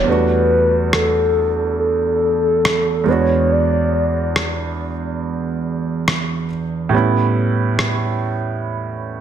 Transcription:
0, 0, Header, 1, 5, 480
1, 0, Start_track
1, 0, Tempo, 857143
1, 40, Time_signature, 4, 2, 24, 8
1, 5155, End_track
2, 0, Start_track
2, 0, Title_t, "Soft synth lead"
2, 0, Program_c, 0, 80
2, 45, Note_on_c, 0, 71, 102
2, 523, Note_off_c, 0, 71, 0
2, 527, Note_on_c, 0, 69, 95
2, 981, Note_off_c, 0, 69, 0
2, 1006, Note_on_c, 0, 69, 101
2, 1726, Note_on_c, 0, 73, 100
2, 1734, Note_off_c, 0, 69, 0
2, 1966, Note_on_c, 0, 74, 106
2, 1974, Note_off_c, 0, 73, 0
2, 2443, Note_off_c, 0, 74, 0
2, 5155, End_track
3, 0, Start_track
3, 0, Title_t, "Synth bell"
3, 0, Program_c, 1, 98
3, 0, Note_on_c, 1, 62, 76
3, 257, Note_off_c, 1, 62, 0
3, 5155, End_track
4, 0, Start_track
4, 0, Title_t, "Grand piano"
4, 0, Program_c, 2, 0
4, 0, Control_c, 2, 64, 127
4, 21, Note_on_c, 2, 40, 62
4, 31, Note_on_c, 2, 55, 52
4, 41, Note_on_c, 2, 57, 54
4, 47, Control_c, 2, 64, 0
4, 51, Note_on_c, 2, 62, 54
4, 61, Note_on_c, 2, 66, 68
4, 139, Control_c, 2, 64, 127
4, 1688, Note_off_c, 2, 40, 0
4, 1693, Note_off_c, 2, 55, 0
4, 1698, Note_off_c, 2, 57, 0
4, 1701, Note_on_c, 2, 40, 62
4, 1703, Note_off_c, 2, 62, 0
4, 1708, Note_off_c, 2, 66, 0
4, 1711, Note_on_c, 2, 56, 55
4, 1721, Note_on_c, 2, 59, 55
4, 1729, Control_c, 2, 64, 0
4, 1731, Note_on_c, 2, 62, 54
4, 1742, Note_on_c, 2, 66, 66
4, 1811, Control_c, 2, 64, 127
4, 3608, Note_off_c, 2, 40, 0
4, 3613, Note_off_c, 2, 56, 0
4, 3618, Note_off_c, 2, 59, 0
4, 3623, Note_off_c, 2, 62, 0
4, 3629, Note_off_c, 2, 66, 0
4, 3860, Note_on_c, 2, 45, 76
4, 3870, Note_on_c, 2, 55, 68
4, 3881, Note_on_c, 2, 59, 68
4, 3887, Control_c, 2, 64, 0
4, 3891, Note_on_c, 2, 61, 65
4, 3901, Note_on_c, 2, 64, 77
4, 4000, Control_c, 2, 64, 127
4, 5155, Note_off_c, 2, 45, 0
4, 5155, Note_off_c, 2, 55, 0
4, 5155, Note_off_c, 2, 59, 0
4, 5155, Note_off_c, 2, 61, 0
4, 5155, Note_off_c, 2, 64, 0
4, 5155, End_track
5, 0, Start_track
5, 0, Title_t, "Drums"
5, 521, Note_on_c, 9, 37, 113
5, 577, Note_off_c, 9, 37, 0
5, 1484, Note_on_c, 9, 37, 115
5, 1540, Note_off_c, 9, 37, 0
5, 2441, Note_on_c, 9, 37, 114
5, 2497, Note_off_c, 9, 37, 0
5, 3404, Note_on_c, 9, 37, 107
5, 3460, Note_off_c, 9, 37, 0
5, 4362, Note_on_c, 9, 37, 109
5, 4418, Note_off_c, 9, 37, 0
5, 5155, End_track
0, 0, End_of_file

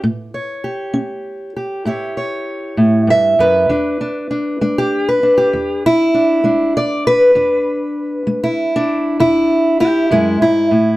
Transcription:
0, 0, Header, 1, 2, 480
1, 0, Start_track
1, 0, Tempo, 609756
1, 32, Time_signature, 12, 3, 24, 8
1, 8633, End_track
2, 0, Start_track
2, 0, Title_t, "Steel-string acoustic guitar"
2, 0, Program_c, 0, 25
2, 28, Note_on_c, 0, 45, 78
2, 269, Note_on_c, 0, 73, 42
2, 461, Note_off_c, 0, 45, 0
2, 504, Note_on_c, 0, 67, 45
2, 736, Note_on_c, 0, 61, 68
2, 1175, Note_off_c, 0, 61, 0
2, 1223, Note_off_c, 0, 67, 0
2, 1232, Note_on_c, 0, 67, 44
2, 1459, Note_on_c, 0, 45, 65
2, 1465, Note_off_c, 0, 67, 0
2, 1467, Note_on_c, 0, 64, 43
2, 1469, Note_off_c, 0, 73, 0
2, 1474, Note_on_c, 0, 67, 49
2, 1482, Note_on_c, 0, 73, 40
2, 1700, Note_off_c, 0, 73, 0
2, 1709, Note_on_c, 0, 73, 46
2, 1896, Note_off_c, 0, 45, 0
2, 2183, Note_on_c, 0, 45, 59
2, 2418, Note_on_c, 0, 43, 55
2, 2426, Note_off_c, 0, 45, 0
2, 2429, Note_off_c, 0, 73, 0
2, 2443, Note_on_c, 0, 76, 88
2, 2663, Note_off_c, 0, 43, 0
2, 2668, Note_on_c, 0, 42, 58
2, 2671, Note_off_c, 0, 67, 0
2, 2679, Note_on_c, 0, 71, 85
2, 2905, Note_off_c, 0, 42, 0
2, 2907, Note_off_c, 0, 64, 0
2, 2908, Note_on_c, 0, 40, 81
2, 2910, Note_on_c, 0, 62, 50
2, 2916, Note_off_c, 0, 76, 0
2, 3151, Note_off_c, 0, 62, 0
2, 3155, Note_on_c, 0, 62, 48
2, 3340, Note_off_c, 0, 40, 0
2, 3387, Note_off_c, 0, 62, 0
2, 3390, Note_on_c, 0, 62, 41
2, 3630, Note_off_c, 0, 62, 0
2, 3631, Note_on_c, 0, 56, 65
2, 3633, Note_on_c, 0, 62, 47
2, 3754, Note_off_c, 0, 71, 0
2, 3765, Note_on_c, 0, 67, 76
2, 3997, Note_off_c, 0, 67, 0
2, 4003, Note_on_c, 0, 71, 69
2, 4062, Note_off_c, 0, 56, 0
2, 4113, Note_off_c, 0, 62, 0
2, 4116, Note_on_c, 0, 62, 42
2, 4232, Note_on_c, 0, 67, 70
2, 4355, Note_on_c, 0, 40, 70
2, 4590, Note_off_c, 0, 67, 0
2, 4596, Note_off_c, 0, 71, 0
2, 4614, Note_on_c, 0, 64, 105
2, 4784, Note_off_c, 0, 40, 0
2, 4827, Note_off_c, 0, 62, 0
2, 4836, Note_on_c, 0, 62, 46
2, 5063, Note_off_c, 0, 62, 0
2, 5067, Note_on_c, 0, 56, 63
2, 5073, Note_on_c, 0, 62, 48
2, 5322, Note_off_c, 0, 64, 0
2, 5328, Note_on_c, 0, 74, 91
2, 5500, Note_off_c, 0, 56, 0
2, 5559, Note_off_c, 0, 74, 0
2, 5565, Note_on_c, 0, 71, 103
2, 5763, Note_off_c, 0, 62, 0
2, 5787, Note_on_c, 0, 40, 76
2, 5792, Note_on_c, 0, 62, 50
2, 6221, Note_off_c, 0, 40, 0
2, 6508, Note_on_c, 0, 56, 66
2, 6637, Note_off_c, 0, 71, 0
2, 6640, Note_on_c, 0, 64, 80
2, 6871, Note_off_c, 0, 62, 0
2, 6894, Note_on_c, 0, 62, 78
2, 6942, Note_off_c, 0, 56, 0
2, 7232, Note_off_c, 0, 64, 0
2, 7239, Note_on_c, 0, 40, 72
2, 7244, Note_on_c, 0, 64, 96
2, 7669, Note_off_c, 0, 40, 0
2, 7709, Note_off_c, 0, 64, 0
2, 7716, Note_on_c, 0, 67, 83
2, 7720, Note_on_c, 0, 64, 79
2, 7725, Note_off_c, 0, 62, 0
2, 7955, Note_on_c, 0, 42, 56
2, 7956, Note_off_c, 0, 64, 0
2, 7956, Note_off_c, 0, 67, 0
2, 7962, Note_on_c, 0, 56, 69
2, 7968, Note_on_c, 0, 64, 85
2, 8193, Note_off_c, 0, 42, 0
2, 8193, Note_off_c, 0, 64, 0
2, 8196, Note_on_c, 0, 44, 57
2, 8199, Note_off_c, 0, 56, 0
2, 8203, Note_on_c, 0, 64, 87
2, 8432, Note_on_c, 0, 45, 59
2, 8436, Note_off_c, 0, 44, 0
2, 8633, Note_off_c, 0, 45, 0
2, 8633, Note_off_c, 0, 64, 0
2, 8633, End_track
0, 0, End_of_file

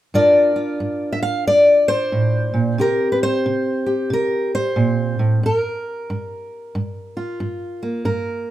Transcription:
0, 0, Header, 1, 2, 480
1, 0, Start_track
1, 0, Key_signature, -2, "minor"
1, 0, Tempo, 660793
1, 97, Time_signature, 4, 2, 24, 8
1, 6179, End_track
2, 0, Start_track
2, 0, Title_t, "Steel-string acoustic guitar"
2, 0, Program_c, 0, 25
2, 101, Note_on_c, 0, 43, 72
2, 106, Note_on_c, 0, 62, 54
2, 109, Note_on_c, 0, 65, 51
2, 110, Note_on_c, 0, 74, 94
2, 115, Note_on_c, 0, 70, 49
2, 397, Note_off_c, 0, 65, 0
2, 406, Note_on_c, 0, 65, 46
2, 543, Note_off_c, 0, 43, 0
2, 582, Note_on_c, 0, 43, 66
2, 814, Note_off_c, 0, 74, 0
2, 817, Note_on_c, 0, 76, 79
2, 879, Note_off_c, 0, 76, 0
2, 890, Note_on_c, 0, 77, 94
2, 1024, Note_off_c, 0, 43, 0
2, 1063, Note_off_c, 0, 77, 0
2, 1070, Note_on_c, 0, 43, 69
2, 1071, Note_on_c, 0, 74, 99
2, 1364, Note_off_c, 0, 70, 0
2, 1367, Note_on_c, 0, 72, 95
2, 1507, Note_off_c, 0, 43, 0
2, 1541, Note_on_c, 0, 45, 58
2, 1839, Note_off_c, 0, 45, 0
2, 1842, Note_on_c, 0, 46, 57
2, 1844, Note_off_c, 0, 74, 0
2, 1999, Note_off_c, 0, 62, 0
2, 1999, Note_off_c, 0, 65, 0
2, 2019, Note_off_c, 0, 46, 0
2, 2021, Note_off_c, 0, 72, 0
2, 2021, Note_on_c, 0, 48, 74
2, 2029, Note_on_c, 0, 60, 50
2, 2032, Note_on_c, 0, 67, 51
2, 2041, Note_on_c, 0, 70, 89
2, 2263, Note_off_c, 0, 70, 0
2, 2266, Note_on_c, 0, 71, 71
2, 2324, Note_off_c, 0, 71, 0
2, 2346, Note_on_c, 0, 72, 89
2, 2463, Note_off_c, 0, 48, 0
2, 2512, Note_on_c, 0, 48, 72
2, 2804, Note_off_c, 0, 67, 0
2, 2807, Note_on_c, 0, 67, 47
2, 2948, Note_off_c, 0, 48, 0
2, 2979, Note_on_c, 0, 48, 71
2, 2990, Note_off_c, 0, 72, 0
2, 3003, Note_on_c, 0, 70, 86
2, 3290, Note_off_c, 0, 70, 0
2, 3303, Note_on_c, 0, 72, 91
2, 3422, Note_off_c, 0, 48, 0
2, 3458, Note_on_c, 0, 46, 62
2, 3758, Note_off_c, 0, 46, 0
2, 3771, Note_on_c, 0, 45, 60
2, 3921, Note_off_c, 0, 60, 0
2, 3943, Note_off_c, 0, 45, 0
2, 3947, Note_on_c, 0, 43, 77
2, 3949, Note_off_c, 0, 72, 0
2, 3965, Note_on_c, 0, 70, 79
2, 4385, Note_off_c, 0, 43, 0
2, 4430, Note_on_c, 0, 43, 72
2, 4867, Note_off_c, 0, 43, 0
2, 4903, Note_on_c, 0, 43, 69
2, 5206, Note_on_c, 0, 65, 46
2, 5228, Note_off_c, 0, 67, 0
2, 5344, Note_off_c, 0, 43, 0
2, 5376, Note_on_c, 0, 43, 71
2, 5685, Note_on_c, 0, 58, 46
2, 5821, Note_off_c, 0, 43, 0
2, 5839, Note_off_c, 0, 70, 0
2, 5840, Note_off_c, 0, 65, 0
2, 5847, Note_on_c, 0, 43, 76
2, 5850, Note_on_c, 0, 70, 67
2, 6179, Note_off_c, 0, 43, 0
2, 6179, Note_off_c, 0, 58, 0
2, 6179, Note_off_c, 0, 70, 0
2, 6179, End_track
0, 0, End_of_file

